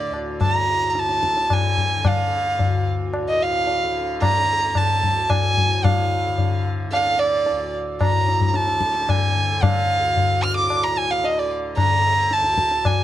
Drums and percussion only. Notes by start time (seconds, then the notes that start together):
0.14 tabla na
0.41 tabla na, tabla ge
0.95 tabla te
1.09 tabla te
1.23 tabla ke
1.37 tabla te
1.50 tabla na, tabla ge
1.77 tabla ge
2.05 tabla na, tabla ge
2.59 tabla tin, tabla ge
3.13 tabla na
3.67 tabla tin
4.22 tabla na, tabla ge
4.75 tabla na, tabla ge
5.03 tabla ge
5.30 tabla na, tabla ge
5.57 tabla ge
5.84 tabla na, tabla ge
6.38 tabla tin, tabla ge
6.93 tabla na
7.46 tabla tin
8.01 tabla na, tabla ge
8.28 tabla te
8.41 tabla ge
8.54 tabla te
8.67 tabla te
8.81 tabla ke
8.95 tabla te
9.09 tabla na, tabla ge
9.63 tabla na, tabla ge
10.17 tabla tin, tabla ge
10.70 tabla na
11.24 tabla tin
11.77 tabla na, tabla ge
12.31 tabla te
12.44 tabla te
12.58 tabla ke
12.71 tabla te
12.85 tabla na, tabla ge